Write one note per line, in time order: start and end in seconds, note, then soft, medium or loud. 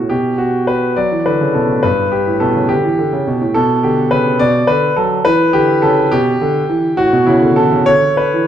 0.00 0.10 A2 soft
0.00 0.10 F#4 medium
0.09 0.73 B2 medium
0.09 0.39 G4 medium
0.38 0.67 F#4 medium
0.67 0.97 B4 medium
0.96 1.11 F#3 medium
0.96 1.26 D5 medium
1.12 1.25 E3 soft
1.26 1.40 D3 medium
1.26 1.55 B4 medium
1.41 1.54 C#3 medium
1.54 1.69 B2 soft
1.54 1.83 A4 medium
1.70 1.83 A2 soft
1.83 2.15 G2 medium
1.83 2.12 B4 medium
2.11 2.41 G4 medium
2.27 2.40 A2 soft
2.40 2.55 B2 medium
2.40 2.69 A4 medium
2.56 2.69 C#3 soft
2.69 2.83 D3 medium
2.69 3.54 G4 medium
2.84 2.98 E3 medium
2.98 3.12 D3 medium
3.13 3.26 C#3 medium
3.27 3.40 B2 medium
3.41 3.54 A2 medium
3.54 3.76 B2 medium
3.54 3.83 A4 medium
3.83 4.04 D3 medium
3.83 4.12 G4 medium
4.11 4.33 C#3 medium
4.11 4.40 B4 medium
4.39 4.61 B2 medium
4.39 4.68 D5 loud
4.67 4.89 D3 medium
4.67 4.96 B4 medium
4.96 5.18 F#3 medium
4.96 5.25 A4 medium
5.25 5.46 E3 medium
5.25 5.54 B4 loud
5.53 5.75 D3 medium
5.53 5.83 G4 medium
5.82 6.04 C#3 medium
5.82 6.12 A4 medium
6.11 6.33 B2 medium
6.11 6.98 G4 loud
6.41 6.62 D3 medium
6.70 6.90 E3 medium
6.97 7.12 A2 medium
6.97 7.27 F#4 medium
7.13 7.27 B2 medium
7.26 7.42 C#3 medium
7.26 7.57 E4 medium
7.42 7.57 D3 medium
7.56 7.72 E3 medium
7.56 7.87 A4 medium
7.72 7.87 C#3 medium
7.86 8.21 D3 medium
7.86 8.18 C#5 loud
8.17 8.47 B4 medium
8.34 8.47 E3 medium